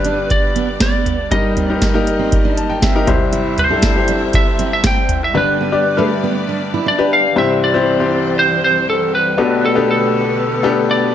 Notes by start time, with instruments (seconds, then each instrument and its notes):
Already playing: upright piano G2 D3 D4 G4 B4, string section G3 B3 D4 B4 D5, lead electric guitar B4
0.05 steel-string acoustic guitar D4, closed hi-hat
0.30 lead electric guitar D5, kick, closed hi-hat
0.56 steel-string acoustic guitar B3, closed hi-hat
0.80 steel-string acoustic guitar B3, lead electric guitar D5, kick, snare, closed hi-hat
1.06 closed hi-hat, floor tom
1.31 upright piano G2 G3 D#4 G4 A#4, string section A#3 D#4 A#4 D#5, steel-string acoustic guitar D#4, lead electric guitar D#5, kick, closed hi-hat
1.57 steel-string acoustic guitar C4, closed hi-hat, floor tom
1.69 upright piano D#4 G4 A#4
1.82 kick, snare, closed hi-hat
1.94 steel-string acoustic guitar A#3, upright piano D#4 G4 A#4
2.07 closed hi-hat
2.19 steel-string acoustic guitar C4
2.32 kick, closed hi-hat
2.45 steel-string acoustic guitar D4
2.57 upright piano A5, closed hi-hat
2.69 steel-string acoustic guitar D#4, upright piano G5
2.82 steel-string acoustic guitar C4, upright piano E5, kick, snare, closed hi-hat
2.95 upright piano D#4 G4 A#4
3.07 upright piano C2 G2 E4 G4 C5, string section C4 E4 C5 E5, kick, closed hi-hat, floor tom
3.33 steel-string acoustic guitar E4, closed hi-hat
3.58 lead electric guitar C5, closed hi-hat, floor tom
3.70 steel-string acoustic guitar D4, upright piano E4 G4 A4
3.82 kick, snare, closed hi-hat
3.95 upright piano E4 G4 C5
4.08 steel-string acoustic guitar D4, closed hi-hat
4.33 lead electric guitar E5, kick, closed hi-hat
4.59 steel-string acoustic guitar C4, closed hi-hat
4.73 lead electric guitar E5
4.84 steel-string acoustic guitar C4, lead electric guitar G5, kick, snare, closed hi-hat
5.09 closed hi-hat, floor tom
5.24 lead electric guitar E5
5.34 upright piano G2 D3 D4 G4 B4, string section G3 B3 D4 B4 D5, steel-string acoustic guitar D4, lead electric guitar B4
5.61 steel-string acoustic guitar B3
5.72 upright piano D4 G4 D5
5.97 steel-string acoustic guitar A3, upright piano D4 G4 B4
6.24 steel-string acoustic guitar B3
6.49 steel-string acoustic guitar D4
6.74 steel-string acoustic guitar E4
6.86 steel-string acoustic guitar D4, lead electric guitar D5
6.98 upright piano D4 G4 B4
7.13 lead electric guitar F5
7.36 upright piano C2 G2 C4 E4 G4 C5, string section E3 G3 C4 G4 C5, lead electric guitar E5
7.64 lead electric guitar D5
7.74 upright piano C4 E4 G4 C5
7.99 upright piano C4 E4 G4 C5
8.39 lead electric guitar C5
8.64 lead electric guitar C5
8.90 lead electric guitar A4
9.15 lead electric guitar B4
9.38 upright piano B1 B2 B3 D4 G4 A4, string section D3 A3 B3 B4
9.66 lead electric guitar A4
9.75 upright piano B3 D4 G4 A4
9.91 lead electric guitar A4
10.63 upright piano B3 D4 G4 A4
10.91 lead electric guitar D5